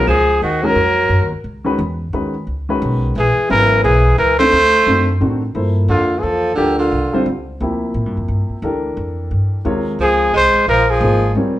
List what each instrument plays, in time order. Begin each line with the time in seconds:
0.07 upright bass C#2, tenor saxophone F3, trumpet G#4
0.42 upright bass D#2, tenor saxophone D#3, trumpet F#4
0.62 upright piano D#3 G#3 C#4 F#4 A#4, tenor saxophone F#3, trumpet A#4
0.75 upright bass F2
1.09 upright bass F#2
1.21 upright bass D#2
1.32 upright bass C#2
1.44 upright bass C#2
1.64 upright piano D#3 G#3 C#4 F#4 B4
1.79 upright bass E2
2.13 upright bass D#2, upright piano D#3 G#3 C#4 F#4 B4
2.47 upright bass C#2
2.69 upright piano D#3 G#3 C#4 F#4 B4
2.82 upright bass B1
3.16 upright bass A#1, tenor saxophone E3, trumpet G#4
3.37 muted upright bass stroke
3.49 upright bass G#1, upright piano C#3 F#3 B3 E4 A#4, tenor saxophone E3, trumpet A#4
3.84 upright bass B1, tenor saxophone E3, trumpet G#4
4.17 upright bass C#2, tenor saxophone E3, trumpet A#4
4.39 upright piano D#3 A3 C4 D4 A4, tenor saxophone A3, trumpet C5
4.52 upright bass D2
4.86 upright bass F#2, upright piano D#3 A3 C4 D4 F#4
5.20 upright bass A2, upright piano D#3 A3 C4 D4 F#4
5.54 upright bass G2, upright piano F3 A#3 E4 A4 C5
5.88 upright bass F2, tenor saxophone D3, trumpet F4
6.18 tenor saxophone E3, trumpet G#4
6.22 upright bass E2, tenor saxophone F3, trumpet A4
6.55 upright bass D2, tenor saxophone D3, upright piano F3 D4 G4 A4 A#4, trumpet G4
6.78 tenor saxophone D3, trumpet F4
6.92 upright bass C2
7.13 upright piano D3 G3 C4 F4 C5, muted upright bass stroke
7.26 upright bass C#2
7.60 upright bass D2, upright piano C3 F3 A#3 E4 G4
7.94 upright bass A2
8.06 upright bass G2
8.17 upright bass F2
8.28 upright bass G2
8.49 muted upright bass stroke
8.62 upright bass D2, upright piano E3 D4 G4 A4 A#4
8.97 upright bass F2
9.31 upright bass G2
9.65 upright bass D#2, upright piano C3 G#3 F4 A#4 C#5
9.99 upright bass C#2, tenor saxophone F3, trumpet G#4
10.33 upright bass C2, tenor saxophone G#3, trumpet C5
10.54 muted upright bass stroke
10.67 upright bass A#1, tenor saxophone F3, trumpet A#4
10.89 tenor saxophone F3, trumpet G#4
11.01 upright bass G#1, upright piano F3 A#3 D#4 G#4 C5
11.35 upright bass C#2, upright piano G3 C4 F4 A#4 C#5